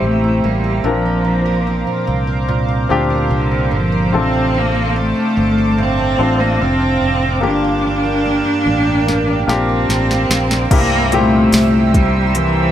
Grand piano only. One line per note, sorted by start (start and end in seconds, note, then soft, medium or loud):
0.00 0.78 C4 medium
0.00 0.78 E4 soft
0.00 0.79 G4 medium
0.00 0.79 C5 medium
0.84 2.40 C4 soft
0.84 2.41 D4 soft
0.84 2.41 F4 soft
0.84 2.41 A#4 medium
2.89 4.07 C4 medium
2.89 4.07 D4 medium
2.89 4.07 F4 medium
2.89 4.08 G4 medium
4.12 5.32 C3 medium
4.12 5.69 C4 medium
4.12 5.69 D4 soft
4.12 5.69 F4 medium
4.12 5.70 A4 medium
6.18 7.35 C4 medium
6.18 7.36 D4 medium
6.18 7.36 F4 medium
6.18 7.36 C5 medium
7.40 8.97 A#3 medium
7.40 8.98 D4 soft
7.40 8.98 F4 medium
7.40 8.98 G4 medium
9.47 10.64 A#3 medium
9.47 10.65 D4 medium
9.47 10.65 F4 medium
9.47 10.65 G4 medium
10.71 11.90 G2 medium
10.71 11.10 A#3 medium
10.71 11.10 C4 medium
10.71 11.10 E4 medium
10.71 11.11 G4 medium
11.12 12.68 A#2 medium
11.12 12.68 C4 medium
11.12 12.69 E4 medium
11.12 12.69 G4 medium